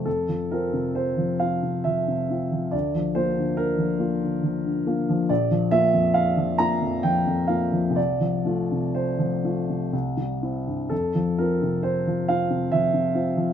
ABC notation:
X:1
M:3/4
L:1/16
Q:1/4=67
K:F
V:1 name="Upright piano"
A2 B2 c2 f2 e4 | d2 c2 B8 | d2 e2 f2 b2 g2 f2 | d4 c4 z4 |
A2 B2 c2 f2 e4 |]
V:2 name="Upright piano" clef=bass
F,, F, [CF] C,2 F, [CF] C, F, C, [CF] F, | D,, F, [B,F] D,2 F, [B,F] D, F, D, [B,F] F, | B,,, F, [B,F] F,,2 F, [B,F] F,, F, F,, [B,F] F, | C,, F, [A,F] C,2 F, [A,F] C, C,, G, [CE] G,, |
F,, F, [CF] C,2 F, [CF] C, F, C, [CF] F, |]